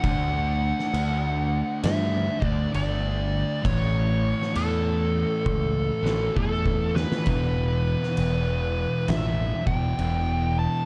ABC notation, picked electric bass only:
X:1
M:4/4
L:1/8
Q:"Swing" 1/4=66
K:Edor
V:1 name="Picked electric bass" clef=bass
D,,2 D,,2 G,, D,, G,,,2 | A,,,2 E,,2 C,, A,,, E,,2 | E,,,2 E,,,2 A,,, E,,, E,,,2 |]